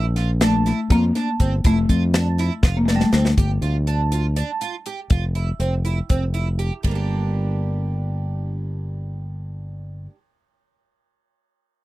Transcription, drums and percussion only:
0.16 snare, closed hi-hat
0.41 snare, closed hi-hat
0.66 snare, closed hi-hat
0.90 kick, closed hi-hat
1.15 snare, closed hi-hat
1.40 kick, closed hi-hat
1.65 kick, closed hi-hat
1.89 kick, closed hi-hat
2.14 snare, closed hi-hat
2.38 snare, closed hi-hat
2.63 kick, snare
2.88 snare
3.00 snare
3.13 snare
3.25 snare
3.38 kick, closed hi-hat
3.63 closed hi-hat
3.87 closed hi-hat
4.12 closed hi-hat
4.36 closed hi-hat
4.61 closed hi-hat
4.86 closed hi-hat
5.10 kick, closed hi-hat
5.35 closed hi-hat
5.60 closed hi-hat
5.85 closed hi-hat
6.10 kick, closed hi-hat
6.35 closed hi-hat
6.59 closed hi-hat
6.84 kick, ride

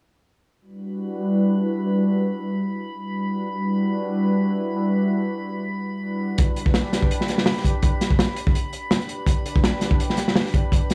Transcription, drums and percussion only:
6.38 kick, closed hi-hat
6.56 closed hi-hat
6.66 kick
6.74 snare, closed hi-hat
6.93 snare, closed hi-hat
7.02 kick
7.11 closed hi-hat
7.21 snare
7.28 snare, closed hi-hat
7.38 snare
7.46 snare, open hi-hat
7.57 snare
7.64 kick, closed hi-hat
7.82 kick, closed hi-hat
8.01 snare, closed hi-hat
8.11 kick
8.19 snare, closed hi-hat
8.36 closed hi-hat
8.47 kick
8.55 closed hi-hat
8.73 closed hi-hat
8.91 snare, closed hi-hat
9.01 closed hi-hat
9.09 closed hi-hat
9.26 kick, closed hi-hat
9.46 closed hi-hat
9.56 kick
9.64 snare, closed hi-hat
9.81 snare, closed hi-hat
9.91 kick
10.00 closed hi-hat
10.10 snare
10.17 snare, closed hi-hat
10.28 snare
10.36 snare, open hi-hat
10.46 snare
10.54 kick, closed hi-hat
10.72 kick, closed hi-hat
10.90 snare, closed hi-hat

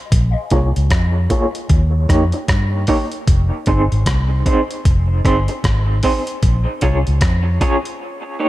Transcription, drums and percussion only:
0.12 kick, closed hi-hat
0.50 kick, closed hi-hat
0.76 closed hi-hat
0.90 kick, cross-stick, closed hi-hat
1.30 kick, closed hi-hat
1.55 closed hi-hat
1.69 kick, closed hi-hat
2.09 kick, cross-stick, closed hi-hat
2.32 closed hi-hat
2.48 kick, cross-stick, closed hi-hat
2.87 kick, open hi-hat
3.12 closed hi-hat
3.27 kick, closed hi-hat
3.66 kick, closed hi-hat
3.92 closed hi-hat
4.06 kick, cross-stick, closed hi-hat
4.46 kick, closed hi-hat
4.71 closed hi-hat
4.85 kick, closed hi-hat
5.25 kick, cross-stick, closed hi-hat
5.48 closed hi-hat
5.64 kick, cross-stick, closed hi-hat
6.03 kick, open hi-hat
6.27 closed hi-hat
6.43 kick, closed hi-hat
6.81 kick, closed hi-hat
7.07 closed hi-hat
7.21 kick, cross-stick, closed hi-hat
7.61 kick, closed hi-hat
7.85 closed hi-hat

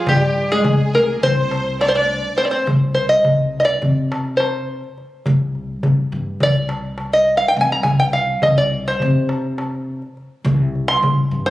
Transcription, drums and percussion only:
0.07 darbuka dum
0.36 darbuka ka
0.64 darbuka dum
0.94 darbuka ka
1.23 darbuka dum
1.51 darbuka tek
1.81 darbuka tek
2.11 darbuka ka
2.25 darbuka ka
2.67 darbuka dum
2.96 darbuka ka
3.25 darbuka dum
3.53 darbuka ka
3.82 darbuka dum
4.12 darbuka tek
4.40 darbuka tek
4.84 darbuka ka
4.98 darbuka ka
5.26 darbuka dum
5.55 darbuka ka
5.83 darbuka dum
6.11 darbuka ka
6.40 darbuka dum
6.69 darbuka tek
6.98 darbuka tek
7.42 darbuka ka
7.55 darbuka ka
7.84 darbuka dum
8.13 darbuka ka
8.42 darbuka dum
8.72 darbuka ka
9.00 darbuka dum
9.29 darbuka tek
9.58 darbuka tek
10.02 darbuka ka
10.17 darbuka ka
10.46 darbuka dum
10.75 darbuka ka
11.04 darbuka dum
11.33 darbuka ka

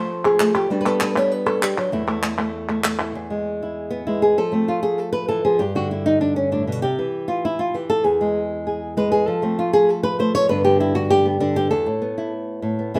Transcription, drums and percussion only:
0.25 clap
0.40 clap
0.55 clap
1.00 clap
1.16 clap
1.47 clap
1.63 clap
1.78 clap
2.08 clap
2.23 clap
2.38 clap
2.69 clap
2.84 clap
2.99 clap

